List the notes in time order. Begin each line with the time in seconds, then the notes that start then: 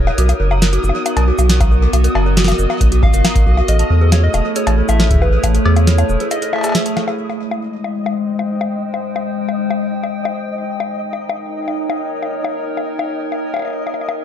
Already playing: D#1 D#4 A#4 C#5 D#5 D#6
0.07 A#4, high bongo
0.18 B1 B3 F#4, closed hi-hat
0.29 closed hi-hat, high bongo
0.40 F#1 A#4
0.51 F#4 A#5, high bongo
0.62 A#4, snare, closed hi-hat
0.73 F#4, closed hi-hat
0.84 F#1 F#4, shaker
0.89 high bongo
0.95 A#4
1.06 A#5, closed hi-hat, high bongo
1.17 B1 A#4, closed hi-hat, cowbell
1.28 F#4
1.38 B1 F#4, closed hi-hat, high bongo, shaker
1.50 A#4, snare, closed hi-hat
1.60 A#5, kick, closed hi-hat, high bongo
1.71 A#4
1.76 D#5
1.82 F#4
1.93 B1 F#4, closed hi-hat, high bongo
2.04 A#4, closed hi-hat
2.15 F#1 A#5, cowbell, high bongo
2.26 A#4
2.37 F#4, snare, closed hi-hat
2.44 F#4, snare, closed hi-hat, high bongo
2.52 snare
2.59 F#1 A#4, shaker
2.70 A#5, high bongo
2.81 B1 A#4, kick, closed hi-hat
2.92 F#4, closed hi-hat
3.03 F#4 F5, kick, high bongo
3.14 F#1 A#4, closed hi-hat, shaker
3.25 A#5, snare, closed hi-hat, high bongo
3.36 A#4, kick, closed hi-hat
3.46 B1 F#4
3.57 F#4, high bongo
3.68 A1 A3 A4 D#5, closed hi-hat
3.79 E4 A5, closed hi-hat
3.90 E2 A4
4.01 G#4
4.12 G#4 C#5, snare, closed hi-hat, high bongo
4.23 A4 D#5
4.34 E1 C#5 A5, closed hi-hat, high bongo, shaker
4.45 A4
4.56 G#4 C#5, closed hi-hat
4.67 A1 G#4, closed hi-hat, cowbell, high bongo
4.78 A4
4.89 A1 E5 A5, closed hi-hat, high bongo, shaker
5.00 A4, snare
5.11 G#4, kick, closed hi-hat
5.13 kick
5.16 kick
5.19 kick
5.22 G#4 B4, kick, high bongo
5.24 kick
5.27 kick
5.30 A4, kick
5.44 A1 A5, kick, closed hi-hat, high bongo
5.55 A4, closed hi-hat
5.65 E2 G#4, cowbell
5.76 G#4, closed hi-hat, high bongo
5.87 A4 C#5, snare, closed hi-hat
5.98 A5, closed hi-hat, high bongo
6.09 E1 A4, shaker
6.20 G#4, closed hi-hat
6.31 G#4 D#5, closed hi-hat, high bongo
6.42 A4, closed hi-hat
6.53 A4 E5, cowbell, high bongo
6.56 cowbell
6.58 cowbell
6.61 closed hi-hat, cowbell
6.64 G#4, cowbell, shaker
6.67 cowbell
6.69 cowbell
6.72 G#4, snare, closed hi-hat, cowbell
6.86 A5, closed hi-hat
6.97 A4, snare, high bongo
7.08 G#4, high bongo
7.19 G#3 D#5
7.30 high bongo
7.51 high bongo
7.65 C5
7.78 G5
7.84 high bongo
8.06 high bongo
8.39 high bongo
8.61 high bongo
8.94 high bongo
9.16 high bongo
9.49 high bongo
9.70 high bongo
10.03 high bongo
10.25 high bongo
10.69 D#4
10.80 high bongo
11.13 A#4, high bongo
11.23 C#5
11.29 high bongo
11.68 high bongo
11.90 high bongo
12.22 high bongo
12.44 high bongo
12.77 high bongo
12.99 high bongo
13.32 high bongo
13.54 high bongo
13.56 high bongo
13.59 high bongo
13.62 high bongo
13.65 high bongo
13.68 high bongo
13.70 high bongo
13.87 high bongo
13.94 high bongo
14.01 high bongo
14.09 high bongo
14.20 B3